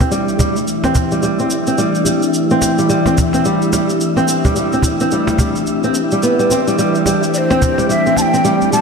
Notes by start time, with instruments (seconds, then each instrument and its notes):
Already playing: ambient pad E3 A3 C4 D4 G4, synth texture E4 E5
0.00 nylon-string guitar C4, cajon bass, shaker
0.11 nylon-string guitar G3, shaker
0.29 shaker
0.39 nylon-string guitar G3, cajon bass, cajon slap, shaker
0.56 shaker
0.68 shaker
0.84 nylon-string guitar C4, cajon slap, shaker
0.95 cajon bass, shaker
1.12 nylon-string guitar G3, shaker
1.23 nylon-string guitar G3, shaker
1.39 nylon-string guitar C4, shaker
1.50 shaker
1.67 nylon-string guitar C4, shaker
1.78 nylon-string guitar G3, shaker
1.95 shaker
2.05 nylon-string guitar G3, cajon slap, shaker
2.23 shaker
2.34 shaker
2.51 nylon-string guitar C4, shaker
2.62 cajon slap, shaker
2.79 nylon-string guitar G3, shaker
2.90 nylon-string guitar G3, shaker
3.06 nylon-string guitar C4, cajon slap, shaker
3.18 cajon bass, shaker
3.33 nylon-string guitar C4, cajon slap, shaker
3.45 nylon-string guitar G3, shaker
3.62 shaker
3.73 nylon-string guitar G3, cajon slap, shaker
3.89 shaker
4.01 shaker
4.16 nylon-string guitar C4, cajon slap, shaker
4.28 shaker
4.45 nylon-string guitar G3, cajon bass, shaker
4.56 nylon-string guitar G3, shaker
4.73 nylon-string guitar C4, shaker
4.82 cajon bass, cajon slap, shaker
5.00 nylon-string guitar C4, shaker
5.11 nylon-string guitar G3, shaker
5.27 cajon slap, shaker
5.39 nylon-string guitar G3, cajon bass, shaker
5.56 shaker
5.67 shaker
5.83 nylon-string guitar C4, shaker
5.95 shaker
6.11 nylon-string guitar G3, shaker
6.23 nylon-string guitar B3, shaker
6.39 nylon-string guitar G3, shaker
6.50 nylon-string guitar C4, cajon slap, shaker
6.67 nylon-string guitar G3, shaker
6.78 nylon-string guitar G3, synth texture D5, shaker
6.95 shaker
7.06 nylon-string guitar G3, cajon slap, shaker
7.23 shaker
7.34 ney C5 D5, shaker
7.50 nylon-string guitar C4, cajon slap, shaker
7.62 cajon bass, shaker
7.78 nylon-string guitar G3, cajon slap, shaker
7.89 nylon-string guitar G3, ney E5, shaker
8.06 nylon-string guitar C4, shaker
8.16 ney A5, cajon slap, shaker
8.22 ney G5
8.34 nylon-string guitar C4, shaker
8.44 nylon-string guitar G3, shaker
8.62 cajon slap, shaker
8.73 nylon-string guitar G3, ney A5, shaker